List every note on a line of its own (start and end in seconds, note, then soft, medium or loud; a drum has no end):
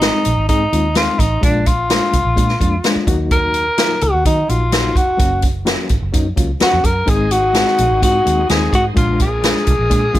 0.00 0.10 G#1 medium
0.00 0.29 G#3 medium
0.00 0.29 C4 medium
0.00 0.49 D#4 medium
0.00 0.29 D#4 medium
0.00 0.29 G#4 medium
0.00 snare loud
0.00 closed hi-hat medium
0.25 0.35 A#1 medium
0.25 closed hi-hat medium
0.37 0.46 G#1 medium
0.49 0.66 G#2 medium
0.49 0.62 G#3 medium
0.49 0.63 C4 medium
0.49 0.62 D#4 medium
0.49 0.93 D#4 medium
0.49 0.63 G#4 medium
0.49 kick medium
0.49 closed hi-hat medium
0.73 1.08 D#2 medium
0.73 0.86 G#3 medium
0.73 0.86 C4 medium
0.73 0.86 D#4 medium
0.73 0.86 F4 medium
0.73 closed hi-hat medium
0.95 1.23 G#3 medium
0.95 1.23 C4 medium
0.95 1.23 D#4 medium
0.95 1.21 F4 medium
0.95 1.24 G#4 medium
0.95 snare loud
0.95 closed hi-hat medium
1.19 1.37 A1 medium
1.19 1.43 D#4 medium
1.19 kick medium
1.19 closed hi-hat medium
1.41 1.99 A#1 medium
1.41 1.69 G#3 medium
1.41 1.70 A#3 medium
1.41 1.70 D4 medium
1.41 1.69 D4 medium
1.41 1.70 F4 medium
1.41 kick loud
1.41 closed hi-hat medium
1.66 3.08 F4 medium
1.66 kick medium
1.66 closed hi-hat medium
1.89 2.17 G#3 medium
1.89 2.17 A#3 medium
1.89 2.17 D4 medium
1.89 2.17 F4 medium
1.89 snare loud
1.89 closed hi-hat medium
2.13 2.22 C2 medium
2.13 kick medium
2.13 closed hi-hat medium
2.25 2.34 A#1 medium
2.36 2.55 A#2 medium
2.36 2.50 G#3 medium
2.36 2.50 A#3 medium
2.36 2.51 D4 medium
2.36 2.51 F4 medium
2.36 kick medium
2.36 closed hi-hat medium
2.49 snare soft
2.60 2.78 F2 medium
2.60 2.74 G#3 medium
2.60 2.74 A#3 medium
2.60 2.74 D4 medium
2.60 2.74 F4 medium
2.60 kick medium
2.60 closed hi-hat medium
2.84 3.08 G#3 medium
2.84 3.06 A#3 medium
2.84 3.08 D4 medium
2.84 3.08 F4 medium
2.84 snare loud
2.84 closed hi-hat medium
2.96 muted fingered electric bass stroke soft
3.07 3.69 D#2 medium
3.07 3.64 F#3 medium
3.07 3.64 A#3 medium
3.07 3.64 D#4 medium
3.07 3.64 F#4 medium
3.07 kick medium
3.07 closed hi-hat medium
3.31 4.05 A#4 loud
3.31 kick loud
3.31 closed hi-hat medium
3.54 closed hi-hat medium
3.78 4.05 F#3 medium
3.78 4.06 A#3 medium
3.78 4.06 D#4 medium
3.78 4.06 F4 medium
3.78 snare medium
3.78 closed hi-hat medium
4.01 4.11 C#2 medium
4.01 4.26 F#4 medium
4.01 closed hi-hat medium
4.14 4.23 D#2 medium
4.25 4.43 D#3 medium
4.25 4.39 F#3 medium
4.25 4.39 A#3 medium
4.25 4.39 D#4 medium
4.25 4.51 D#4 medium
4.25 4.39 F#4 medium
4.25 kick medium
4.25 closed hi-hat medium
4.49 4.95 A#1 medium
4.49 4.63 F#3 medium
4.49 4.63 A#3 medium
4.49 4.63 D#4 medium
4.49 4.99 F4 medium
4.49 4.63 F#4 medium
4.49 closed hi-hat medium
4.72 5.00 F#3 medium
4.72 5.00 A#3 medium
4.72 5.00 D#4 medium
4.72 5.00 F#4 medium
4.72 snare loud
4.72 closed hi-hat medium
4.95 5.13 F1 medium
4.95 5.44 F#4 medium
4.95 kick medium
4.95 closed hi-hat medium
5.17 5.76 F#1 loud
5.17 5.46 F#3 medium
5.17 5.46 A#3 medium
5.17 5.46 C#4 medium
5.17 5.47 F#4 medium
5.17 kick loud
5.17 closed hi-hat medium
5.42 kick medium
5.42 closed hi-hat medium
5.65 5.93 F#3 medium
5.65 5.93 A#3 medium
5.65 5.94 C#4 medium
5.65 5.94 F#4 medium
5.65 snare loud
5.65 closed hi-hat medium
5.89 5.99 G#1 medium
5.89 kick medium
5.89 closed hi-hat medium
6.02 6.11 F#1 medium
6.12 6.31 F#2 medium
6.12 6.27 F#3 medium
6.12 6.27 A#3 medium
6.12 6.27 C#4 medium
6.12 6.27 D#4 medium
6.12 kick medium
6.12 closed hi-hat medium
6.36 6.55 C#2 medium
6.36 6.51 F#3 medium
6.36 6.51 A#3 medium
6.36 6.51 C#4 medium
6.36 6.51 F4 medium
6.36 kick medium
6.36 closed hi-hat medium
6.60 6.88 F#3 medium
6.60 6.88 A#3 medium
6.60 6.88 C#4 medium
6.60 6.88 F#4 medium
6.60 6.87 F#4 medium
6.60 muted fingered electric bass stroke soft
6.60 snare loud
6.60 closed hi-hat medium
6.73 6.82 F2 medium
6.84 7.02 F#2 medium
6.84 7.11 A#4 loud
6.84 kick medium
6.84 closed hi-hat medium
7.06 7.64 G#1 loud
7.06 8.94 D#3 medium
7.06 7.35 G#3 medium
7.06 10.19 G#3 medium
7.06 7.35 C4 medium
7.06 8.94 C4 medium
7.06 7.35 D#4 medium
7.06 8.94 D#4 medium
7.06 7.35 G#4 medium
7.06 7.34 G#4 loud
7.06 kick loud
7.06 closed hi-hat medium
7.31 8.03 F#4 loud
7.31 closed hi-hat medium
7.53 7.82 G#3 medium
7.53 7.82 C4 medium
7.53 7.82 D#4 medium
7.53 7.82 G#4 medium
7.53 snare loud
7.53 closed hi-hat medium
7.67 snare soft
7.78 7.88 A#1 medium
7.78 closed hi-hat medium
7.91 8.00 G#1 medium
8.02 8.20 G#2 loud
8.02 8.16 G#3 medium
8.02 8.16 C4 medium
8.02 8.16 D#4 medium
8.02 8.16 F4 medium
8.02 8.47 F#4 medium
8.02 kick medium
8.02 closed hi-hat medium
8.25 8.44 D#2 medium
8.25 8.39 G#3 medium
8.25 8.39 C4 medium
8.25 8.40 D#4 medium
8.25 8.39 G#4 medium
8.25 closed hi-hat medium
8.49 8.68 D#2 medium
8.49 8.77 G#3 medium
8.49 8.77 C4 medium
8.49 8.77 D#4 medium
8.49 8.77 G#4 medium
8.49 8.72 G#4 medium
8.49 snare medium
8.49 closed hi-hat medium
8.73 8.91 G#2 medium
8.73 8.85 F#4 medium
8.73 kick medium
8.73 closed hi-hat medium
8.95 9.53 A#1 medium
8.95 10.19 F3 medium
8.95 9.23 G#3 medium
8.95 9.23 A#3 medium
8.95 10.19 A#3 medium
8.95 9.24 D4 medium
8.95 10.19 D4 medium
8.95 9.24 F4 loud
8.95 9.19 F4 medium
8.95 kick loud
8.95 closed hi-hat medium
9.20 10.19 G#4 loud
9.20 kick medium
9.20 closed hi-hat medium
9.43 9.71 G#3 medium
9.43 9.71 A#3 medium
9.43 9.71 D4 medium
9.43 9.71 F4 medium
9.43 snare loud
9.43 closed hi-hat medium
9.56 snare soft
9.67 9.76 C2 medium
9.67 kick medium
9.67 closed hi-hat medium
9.79 9.88 A#1 medium
9.90 10.09 A#2 medium
9.90 10.04 G#3 medium
9.90 10.04 A#3 medium
9.90 10.04 D4 medium
9.90 10.04 G#4 medium
9.90 kick medium
9.90 closed hi-hat medium
10.13 10.19 F2 medium
10.13 10.19 G#3 medium
10.13 10.19 A#3 medium
10.13 10.19 D4 medium
10.13 10.19 F4 medium
10.13 kick medium
10.13 closed hi-hat medium